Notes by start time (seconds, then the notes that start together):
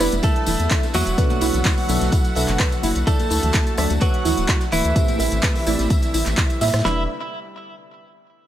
Already playing: D3 G3 B3 E4 B4 E5 B5
0.00 G3 D4 E4 B4 D5, closed hi-hat, tambourine
0.12 E1, closed hi-hat, tambourine, high conga
0.23 A3 E4 A4 A5, kick, closed hi-hat, tambourine, high bongo
0.36 closed hi-hat
0.46 E1 E4, snare, closed hi-hat, open hi-hat, tambourine, low conga
0.59 E2, closed hi-hat, tambourine, high conga
0.70 E4, kick, snare, clap, closed hi-hat, tambourine
0.83 snare, closed hi-hat, tambourine
0.94 E2 F#3 F#4 E5 F#5, closed hi-hat, open hi-hat, tambourine, high conga, low conga
1.07 E1, closed hi-hat, tambourine
1.18 B2 F#3 A3 B3 D4 F#4 A4 B4 D5, kick, closed hi-hat, tambourine
1.30 closed hi-hat, tambourine, high conga
1.41 B1 E4, closed hi-hat, open hi-hat, tambourine, high bongo
1.54 B1, closed hi-hat, tambourine, low conga
1.65 E4, kick, snare, clap, closed hi-hat, tambourine, high conga
1.78 open hi-hat, tambourine
1.88 B1 B2 F#3 B3 D4 E4 A4 E5, closed hi-hat, open hi-hat, tambourine
2.01 B1, snare, closed hi-hat, tambourine, high conga
2.12 E4, kick, closed hi-hat, tambourine
2.24 closed hi-hat, tambourine
2.35 B1 B2 F#3 B3 D4 A4 B4 E5, closed hi-hat, open hi-hat, tambourine
2.48 F#1, clap, closed hi-hat, tambourine, high conga
2.59 B4, kick, snare, clap, closed hi-hat, tambourine
2.72 closed hi-hat, tambourine
2.83 F#1 E4, closed hi-hat, open hi-hat, tambourine, high conga
2.95 B1, closed hi-hat, tambourine
3.07 F#3 A3 D4 E4 A4 D5 A5, kick, closed hi-hat, tambourine
3.19 closed hi-hat, tambourine, high conga
3.30 D2 E4, closed hi-hat, open hi-hat, tambourine, high bongo
3.43 D2, closed hi-hat, tambourine, low conga
3.53 E4, kick, snare, clap, closed hi-hat, tambourine, high conga
3.67 closed hi-hat, tambourine
3.77 D2 F#3 A3 D4 A4 D5 E5, cross-stick, closed hi-hat, open hi-hat, tambourine
3.90 D2, closed hi-hat, tambourine, high conga
4.01 F#3 F#4 B4 F#5, kick, closed hi-hat, tambourine, high bongo
4.14 closed hi-hat
4.25 D2 E4, snare, closed hi-hat, open hi-hat, tambourine, low conga
4.37 D1, closed hi-hat, tambourine, high conga
4.48 E4, kick, snare, clap, closed hi-hat, tambourine
4.60 snare, closed hi-hat, tambourine
4.72 D1 E3 E4 E5, closed hi-hat, open hi-hat, tambourine, high conga, low conga
4.84 D2, closed hi-hat, tambourine
4.96 A2 C3 E3 G3 A3 C4 E4 G4 C5, kick, closed hi-hat, tambourine
5.08 closed hi-hat, tambourine, high conga
5.19 A1 E5, closed hi-hat, open hi-hat, tambourine, high bongo
5.32 A1, closed hi-hat, tambourine, low conga
5.43 B4, kick, snare, clap, closed hi-hat, tambourine, high conga
5.55 open hi-hat, tambourine, high bongo
5.66 A1 A2 E3 A3 C4 E4 G4 D5, closed hi-hat, open hi-hat, tambourine
5.79 A1, snare, closed hi-hat, tambourine, high conga
5.90 E4, kick, closed hi-hat, tambourine
6.02 closed hi-hat, tambourine
6.14 A1 E4, closed hi-hat, open hi-hat, tambourine
6.25 A1, clap, closed hi-hat, tambourine, high conga
6.37 E4, kick, snare, clap, closed hi-hat, tambourine
6.50 closed hi-hat, tambourine
6.61 A2 E5, snare, closed hi-hat, open hi-hat, tambourine, high bongo, high conga
6.67 snare, closed hi-hat
6.73 A2, cross-stick, snare, closed hi-hat, tambourine
6.79 snare, closed hi-hat
6.85 E1 D3 G3 B3 D4 E4 B4 D5 E5, snare